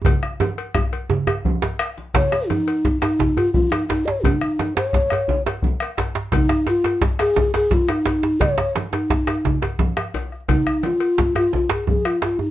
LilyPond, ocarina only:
\new Staff \with { instrumentName = "Ocarina" } { \time 12/8 \key ees \dorian \tempo 4. = 115 r1. | des''4 ees'4. ees'4 f'8 f'8 ees'8 ees'8 des''8 | ees'4. des''2 r2 r8 | ees'4 f'4 r8 aes'4 aes'8 f'8 ees'4. |
des''4 r8 ees'2 r2 r8 | ees'4 f'4. f'8 f'8 aes'8 aes'8 f'8 f'8 ees'8 | }